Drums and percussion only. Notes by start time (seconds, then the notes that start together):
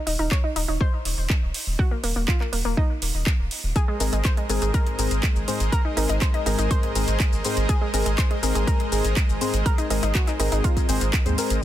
0.07 open hi-hat
0.31 kick, clap
0.56 open hi-hat
0.81 kick
1.05 open hi-hat
1.30 kick, clap
1.54 open hi-hat
1.79 kick
2.04 open hi-hat
2.28 kick, clap
2.41 clap
2.53 open hi-hat
2.77 kick
3.02 open hi-hat
3.27 kick, clap
3.51 open hi-hat
3.76 kick, closed hi-hat, shaker
4.00 open hi-hat, shaker
4.13 closed hi-hat, shaker
4.25 kick, clap, closed hi-hat, shaker
4.37 closed hi-hat
4.50 open hi-hat, shaker
4.62 closed hi-hat, shaker
4.74 kick, closed hi-hat, shaker
4.87 closed hi-hat
4.99 open hi-hat, shaker
5.11 closed hi-hat, shaker
5.23 kick, clap, closed hi-hat, shaker
5.36 shaker
5.48 open hi-hat, shaker
5.60 closed hi-hat, shaker
5.72 kick, closed hi-hat, shaker
5.97 open hi-hat, shaker
6.09 closed hi-hat, shaker
6.22 kick, clap, closed hi-hat, shaker
6.34 closed hi-hat
6.46 open hi-hat, shaker
6.59 closed hi-hat, shaker
6.71 kick, closed hi-hat, shaker
6.83 closed hi-hat
6.95 open hi-hat, shaker
7.08 closed hi-hat, shaker
7.20 kick, clap, closed hi-hat, shaker
7.33 shaker
7.44 open hi-hat, shaker
7.57 closed hi-hat, shaker
7.69 kick, closed hi-hat, shaker
7.94 open hi-hat, shaker
8.06 closed hi-hat, shaker
8.18 kick, clap, closed hi-hat, shaker
8.31 closed hi-hat
8.43 open hi-hat, shaker
8.55 closed hi-hat, shaker
8.67 kick, closed hi-hat, shaker
8.80 closed hi-hat
8.92 open hi-hat, shaker
9.05 closed hi-hat, shaker
9.17 kick, clap, closed hi-hat, shaker
9.29 shaker
9.41 open hi-hat, shaker
9.54 closed hi-hat, shaker
9.66 kick, closed hi-hat, shaker
9.78 closed hi-hat, shaker
9.90 open hi-hat, shaker
10.03 closed hi-hat, shaker
10.15 kick, clap, closed hi-hat, shaker
10.27 clap, closed hi-hat, shaker
10.40 open hi-hat, shaker
10.52 closed hi-hat, shaker
10.64 kick, closed hi-hat, shaker
10.77 kick, closed hi-hat, shaker
10.89 open hi-hat, shaker
11.01 closed hi-hat, shaker
11.13 kick, clap, closed hi-hat, shaker
11.26 closed hi-hat, shaker
11.38 open hi-hat, shaker
11.50 closed hi-hat, shaker